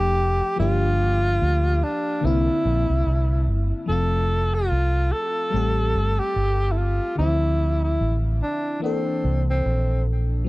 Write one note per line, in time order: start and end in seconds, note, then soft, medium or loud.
0.00 0.40 F1 medium
0.00 0.55 F3 soft
0.00 0.59 A3 soft
0.00 0.59 D4 soft
0.00 0.55 G4 loud
0.00 0.60 G4 medium
0.56 1.38 G1 loud
0.56 2.19 F3 medium
0.56 2.20 A#3 medium
0.56 1.85 F4 loud
0.60 2.21 D4 medium
0.60 2.22 G4 medium
1.42 1.81 D2 loud
1.83 2.26 D4 medium
2.21 2.47 C2 loud
2.21 3.84 D3 medium
2.21 3.85 A#3 medium
2.21 3.86 C4 medium
2.21 3.48 E4 medium
2.27 3.87 E4 medium
2.65 2.88 A#1 loud
2.90 3.06 C2 medium
3.07 3.46 C2 loud
3.48 3.71 G1 medium
3.86 4.68 F1 medium
3.86 5.49 F3 medium
3.86 5.49 A3 medium
3.86 5.50 C4 medium
3.86 4.56 A4 loud
3.92 5.52 F4 medium
4.54 5.14 F4 loud
4.72 5.11 C2 medium
5.12 6.21 A4 loud
5.50 5.93 A1 medium
5.50 7.13 G3 medium
5.50 7.14 A3 medium
5.50 7.15 C4 medium
5.56 7.16 G4 medium
5.95 6.18 G1 medium
6.19 6.73 G4 loud
6.36 6.98 G1 medium
6.72 6.78 E4 medium
6.77 7.18 F4 medium
7.16 7.97 D2 medium
7.16 8.78 D3 medium
7.16 7.25 E3 soft
7.16 8.80 C4 medium
7.16 7.79 E4 loud
7.21 8.82 F3 soft
7.21 8.81 E4 medium
7.84 8.15 E4 medium
8.01 8.40 A1 medium
8.43 8.80 D4 medium
8.80 10.42 E3 medium
8.80 10.44 A#3 medium
8.80 9.44 C4 medium
8.80 10.44 D4 medium
8.86 10.46 A4 medium
9.25 9.64 C2 loud
9.50 10.03 C4 medium
9.66 10.44 A#1 medium
10.44 10.49 F3 medium